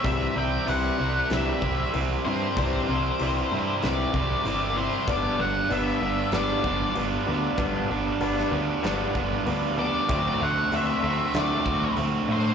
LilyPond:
<<
  \new Staff \with { instrumentName = "Lead electric guitar" } { \time 4/4 \key c \lydian \tempo 4 = 96 e''8 g''8 fis''4 e''4 r8 c''8 | c''2 d''4. c''8 | d''8 fis''8 e''4 d''4 r4 | r2. r8 d''8 |
d''8 fis''8 e''4 d''4 r8 c''8 | }
  \new Staff \with { instrumentName = "Overdriven electric guitar" } { \clef bass \time 4/4 \key c \lydian <c g c' e'>8 <c g c' e'>8 <c g c' e'>8 <c g c' e'>8 <c g c' e'>8 <c g c' e'>8 <c g c' e'>8 <c g c' e'>8 | <c g c' e'>8 <c g c' e'>8 <c g c' e'>8 <c g c' e'>8 <c g c' e'>8 <c g c' e'>8 <c g c' e'>8 <c g c' e'>8 | <g, d g b d'>8 <g, d g b d'>8 <g, d g b d'>8 <g, d g b d'>8 <g, d g b d'>8 <g, d g b d'>8 <g, d g b d'>8 <g, d g b d'>8 | <g, d g b d'>8 <g, d g b d'>8 <g, d g b d'>8 <g, d g b d'>8 <g, d g b d'>8 <g, d g b d'>8 <g, d g b d'>8 <g, d g b d'>8 |
<d a c' fis'>8 <d a c' fis'>8 <d a c' fis'>8 <d a c' fis'>8 <d a c' fis'>8 <d a c' fis'>8 <d a c' fis'>8 <d a c' fis'>8 | }
  \new Staff \with { instrumentName = "Clean electric guitar" } { \clef bass \time 4/4 \key c \lydian <c e g>8 <c e>8 <c e g>8 <c e>8 <c e g>8 c8 <c e>8 <c e>8 | <c e g>8 <c e>8 <c e g>8 <c e>8 <c e g>8 <c e>8 <c e>8 <c e>8 | <g b d'>8 <g b>8 <g b d'>8 <g b>8 <g b d'>8 <g b>8 <g b>8 <g b>8 | <g b d'>8 <g b>8 <g b d'>8 <g b>8 <g b d'>8 <g b>8 <g b>8 <g b>8 |
<d a c'>8 <d a>8 <d a c'>8 <d a>8 <d a c'>8 <d a>8 <d a>8 <d a>8 | }
  \new Staff \with { instrumentName = "Picked electric bass" } { \clef bass \time 4/4 \key c \lydian c,8 c,8 c,8 c,8 c,8 c,8 c,8 g,8 | c,8 c,8 c,8 g,8 c,8 c,8 g,,4 | g,,8 g,,8 g,,8 g,,8 g,,8 g,,8 g,,8 d,8 | g,,8 g,,8 g,,8 d,8 g,,8 g,,8 d,4 |
d,8 d,8 d,8 d,8 d,8 d,8 d,8 a,8 | }
  \new DrumStaff \with { instrumentName = "Drums" } \drummode { \time 4/4 <hho bd>4 hho4 <hho sn>8 bd8 hho4 | <hho bd>4 hho4 <hho sn>8 bd8 hho4 | <hho bd>4 hho4 <hho sn>8 bd8 hho4 | <hho bd>4 hho16 sn8. <hho sn>8 bd8 hho4 |
<hho bd>4 hho4 <hho sn>8 bd8 hho4 | }
>>